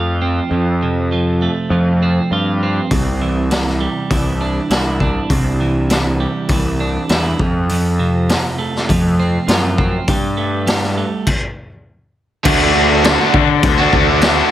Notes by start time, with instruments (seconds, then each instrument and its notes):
Already playing: picked electric bass F2, clean electric guitar F3 A3 C4 F4
0.22 clean electric guitar C4
0.51 picked electric bass F2, clean electric guitar F2
0.83 clean electric guitar C3
1.12 clean electric guitar F3
1.42 clean electric guitar A3
1.70 picked electric bass F2, clean electric guitar F3
2.03 clean electric guitar C4
2.31 picked electric bass G2, clean electric guitar F4
2.63 clean electric guitar C4
2.91 picked electric bass C2, clean electric guitar C3, kick, open hi-hat
3.22 clean electric guitar E3
3.51 clean electric guitar E3, snare, open hi-hat
3.67 snare
3.80 clean electric guitar G3
4.10 picked electric bass C2, clean electric guitar E3, kick, open hi-hat
4.41 clean electric guitar D4
4.70 picked electric bass C2, clean electric guitar E4, snare, open hi-hat
5.00 clean electric guitar D4, kick
5.30 picked electric bass C2, clean electric guitar C3, kick, open hi-hat
5.61 clean electric guitar E3
5.90 clean electric guitar E3, snare, open hi-hat
6.20 clean electric guitar G3
6.49 picked electric bass C2, clean electric guitar E3, kick, open hi-hat
6.80 clean electric guitar D4
7.09 picked electric bass E2, clean electric guitar E4, snare, open hi-hat
7.39 picked electric bass F2, clean electric guitar F2, kick
7.69 clean electric guitar F2, open hi-hat
7.99 clean electric guitar C3
8.29 clean electric guitar F3, snare, open hi-hat
8.59 clean electric guitar A3
8.76 snare
8.89 picked electric bass F2, clean electric guitar F3, kick, open hi-hat
9.20 clean electric guitar C4
9.48 picked electric bass F#2, clean electric guitar F4, snare, open hi-hat
9.78 clean electric guitar C4, kick
10.08 picked electric bass G2, clean electric guitar G3, kick, open hi-hat
10.37 clean electric guitar A3
10.67 clean electric guitar G3, snare, open hi-hat
10.83 snare
10.97 clean electric guitar A3
11.27 kick, crash
12.44 picked electric bass D2, overdriven electric guitar D3 A3 D4 F#4, kick, crash
12.59 distorted electric guitar A3 D4 F#4
12.74 overdriven electric guitar D3 A3 D4 F#4
13.03 overdriven electric guitar D3 A3 D4 F#4, snare, crash
13.18 overdriven electric guitar A3 D4 F#4
13.33 picked electric bass D3, distorted electric guitar D3 A3 D4 F#4, muted overdriven electric guitar stroke, kick
13.50 muted distorted electric guitar stroke
13.63 picked electric bass D2, kick, crash
13.78 overdriven electric guitar A3 D4 F#4
13.93 picked electric bass D2, overdriven electric guitar D3 A3 D4 F#4, kick
14.08 overdriven electric guitar A3 D4 F#4, muted distorted electric guitar stroke
14.22 overdriven electric guitar D3 A3 D4 F#4, snare, crash
14.37 overdriven electric guitar A3 D4 F#4